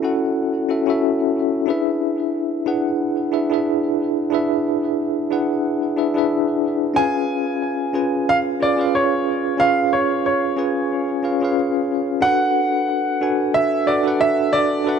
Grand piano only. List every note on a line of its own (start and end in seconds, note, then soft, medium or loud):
6.96 8.32 G#5 loud
8.29 8.36 F5 loud
8.62 8.96 D5 medium
8.95 9.62 C#5 medium
9.60 9.94 F5 loud
9.93 10.25 C#5 medium
10.26 11.54 C#5 medium
12.22 13.51 F#5 loud
13.54 13.89 E5 loud
13.87 14.18 D5 medium
14.21 14.55 E5 loud
14.53 14.99 D5 loud